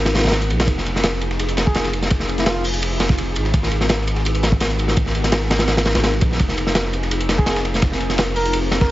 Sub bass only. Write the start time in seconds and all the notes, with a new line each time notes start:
Already playing: G#1
0.24 G#1
0.50 A#1
0.67 F1
2.11 F1
3.10 F1
3.36 G#1
3.54 G#1
4.97 G#1
5.96 G#1
6.22 A#1
6.40 F1
7.83 F1
8.81 F1